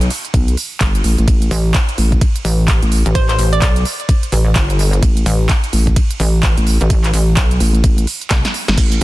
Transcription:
0.01 closed hi-hat
0.10 open hi-hat
0.25 closed hi-hat
0.34 B1, kick, closed hi-hat, ride
0.48 closed hi-hat
0.57 open hi-hat
0.81 G1, kick, clap, closed hi-hat, ride
0.95 closed hi-hat
1.04 A1, open hi-hat
1.18 A1, closed hi-hat
1.28 A1, kick, closed hi-hat, ride
1.42 closed hi-hat
1.51 A1, open hi-hat
1.74 kick, clap, closed hi-hat, ride
1.89 closed hi-hat
1.98 A1, open hi-hat
2.12 kick, closed hi-hat
2.21 kick, closed hi-hat, ride
2.36 closed hi-hat
2.45 A1, open hi-hat
2.68 kick, clap, closed hi-hat, ride
2.82 A1, closed hi-hat
2.92 open hi-hat
3.06 A1, closed hi-hat
3.15 C5, kick, closed hi-hat, ride
3.29 C5, clap, closed hi-hat
3.38 A1, open hi-hat
3.53 D5, closed hi-hat
3.62 B1 D5, kick, clap, closed hi-hat, ride
3.76 closed hi-hat
3.85 open hi-hat
4.00 closed hi-hat
4.09 kick, closed hi-hat, ride
4.23 closed hi-hat
4.32 A1, open hi-hat
4.56 G1, kick, clap, closed hi-hat, ride
4.70 closed hi-hat
4.79 open hi-hat
4.93 closed hi-hat
5.03 A1, kick, closed hi-hat, ride
5.17 closed hi-hat
5.26 A1, open hi-hat
5.49 kick, clap, closed hi-hat, ride
5.64 closed hi-hat
5.73 A1, open hi-hat
5.87 kick, closed hi-hat
5.96 kick, closed hi-hat, ride
6.11 closed hi-hat
6.20 A1, open hi-hat
6.43 kick, clap, closed hi-hat, ride
6.57 A1, closed hi-hat
6.67 open hi-hat
6.81 A1, closed hi-hat
6.90 kick, closed hi-hat, ride
7.04 clap, closed hi-hat
7.13 A1, open hi-hat
7.37 B1, kick, clap, closed hi-hat, ride
7.51 closed hi-hat
7.60 A1, open hi-hat
7.75 closed hi-hat
7.84 A1, kick, closed hi-hat, ride
7.98 closed hi-hat
8.07 open hi-hat
8.21 closed hi-hat
8.31 C2, kick, snare, clap, closed hi-hat, ride
8.45 snare, closed hi-hat
8.54 open hi-hat
8.68 G1, snare, closed hi-hat
8.78 A1, kick, closed hi-hat, ride, crash, shekere
8.91 closed hi-hat, shekere

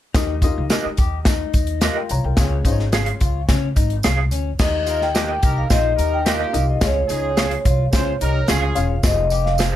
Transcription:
0.14 D#2 D#3 D#4 G4 A#4 D#5, kick, snare, closed hi-hat, tambourine
0.42 D#4 F4 G4 A#4 D#5, kick, closed hi-hat, tambourine
0.58 C#2
0.70 G4 A#4 D#5, snare, closed hi-hat, tambourine
0.86 muted upright bass stroke
0.97 D#2 G4, kick, closed hi-hat, tambourine
1.25 D#4, kick, snare, closed hi-hat, tambourine
1.54 D#2, kick, closed hi-hat, tambourine
1.67 closed hi-hat
1.81 F4 G4 A#4 D#5, snare, closed hi-hat, tambourine
1.97 A#4 G5
2.09 C2 C#5 A#5, closed hi-hat, tambourine
2.24 C2 A#4 G5
2.37 C#2 C#3 C#4 F4 G#4 C#5, kick, snare, closed hi-hat, tambourine
2.65 G#1 C#4 D#4 F4 G#4 C5, kick, closed hi-hat, tambourine
2.72 C#5
2.79 snare
2.92 G#4 C#5 F5, snare, closed hi-hat, tambourine
3.06 closed hi-hat
3.21 C#2 F4, kick, closed hi-hat, tambourine
3.49 C#3 C#4, kick, snare, closed hi-hat, tambourine
3.76 G#1 D#4, kick, closed hi-hat, tambourine
3.90 closed hi-hat
4.03 C2 G#4 C#5 F5, snare, closed hi-hat, tambourine
4.31 D2 C#4, closed hi-hat, tambourine
4.59 D#2 D#3 D#4 G4 A#4 D#5, kick, snare, crash, tambourine
4.86 D#4 F4 G4 A#4, closed hi-hat, tambourine
5.02 G5, snare
5.15 A#3 D#4 G4 A#4 D#5, snare, closed hi-hat, tambourine
5.43 C2 D#4 G4 A#4, kick, closed hi-hat, tambourine
5.58 F5
5.70 A#1 D#4 F4 G#4 C5 D#5, kick, snare, closed hi-hat, tambourine
5.97 D#2 D#4 G4 A#4, closed hi-hat, tambourine
6.13 G5
6.23 A#3 D#4 F4 G4 A#4, snare, closed hi-hat, tambourine
6.28 D#5 F5
6.53 C2 D#4 G4 A#4 D#5, closed hi-hat, tambourine
6.70 D#5
6.81 C#2 C#3 C#4 F4 G#4 C#5 F5, kick, snare, closed hi-hat, tambourine
7.08 C#2 C#4 D#4 F4 G#4, closed hi-hat, tambourine
7.37 G#4 C#5 F5, snare, closed hi-hat, tambourine
7.51 closed hi-hat
7.65 C2 F4, kick, closed hi-hat, tambourine
7.91 C#2 C#4 F4 G#4 C5, kick, snare, closed hi-hat, tambourine
8.21 C2 D#4 G4 A#4, closed hi-hat, tambourine
8.48 C#2 C#4 F4 G#4 C#5 F5, snare, closed hi-hat, tambourine
8.75 E1 C#4 F4 G#4 C#5 F5, closed hi-hat, tambourine
8.96 F5
9.03 F1 F4 G4 C5 D#5, kick, snare, closed hi-hat, tambourine
9.10 G#4
9.30 G4, closed hi-hat, tambourine
9.45 F5, snare
9.58 G#4 C5 F5, snare, closed hi-hat, tambourine

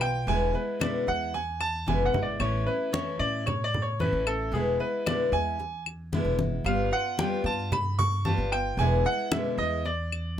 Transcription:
Already playing: B1
0.01 B3 F4 G5, claves
0.27 E1 B2 D3 G#3 B3 E4 G#5, high conga
0.53 G#3 B3 E4 B4, high conga
0.79 B2 D3 G#3 B3 E4 D5, high conga, claves
1.07 E2 G#3 B3 E4 F#5, high conga
1.34 G#5, muted steel-string acoustic guitar stroke, high conga
1.61 A5, high conga, claves
1.86 F#1 B2 D3 G#3 B3 E4 G#5, high conga
2.05 F#5
2.13 G#1 G#3 B3 E4, low conga
2.23 D5
2.39 A1 E3 A3 C#4 E4 C#5, high conga, claves
2.66 A3 C#4 E4 B4, high conga
2.92 E3 A3 C#4 E4 C#5, high conga
3.19 A2 A3 C#4 E4 D5, high conga
3.46 C#5, muted steel-string acoustic guitar stroke, high conga, low conga, claves
3.64 D5
3.74 high conga, low conga
3.82 C#5
3.99 E3 A3 C#4 E4 B4, high conga
4.12 A1
4.26 A3 C#4 E4 A4, claves
4.52 E1 B2 D3 G#3 B3 E4 G#4, high conga
4.79 G#3 B3 E4 B4, high conga
5.06 B2 D3 G#3 B3 E4 D5, high conga, claves
5.32 E2 G#3 B3 E4 G#5, high conga
5.59 muted steel-string acoustic guitar stroke, high conga
5.86 high conga, claves
6.12 B2 D3 G#3 B3 E4, high conga
6.25 E1
6.39 G#3 B3 E4, high conga
6.64 G1 G3 B3 F4 F5, high conga, claves
6.91 B3 F4 F#5, high conga
7.17 G3 B3 F4 G5, high conga
7.44 G2 B3 F4 A5, high conga
7.72 B5, muted steel-string acoustic guitar stroke, high conga, low conga, claves
7.99 C#6, high conga, low conga
8.25 G3 B3 F4 A5, high conga
8.38 G1
8.52 B3 F4 G5, claves
8.77 E1 B2 D3 G#3 B3 E4 G#5, high conga
9.05 G#3 B3 E4 F#5, high conga
9.32 B2 D3 G#3 B3 E4 E5, high conga, claves
9.58 E2 G#3 B3 E4 D#5, high conga
9.85 D5, muted steel-string acoustic guitar stroke, high conga
10.12 high conga, claves

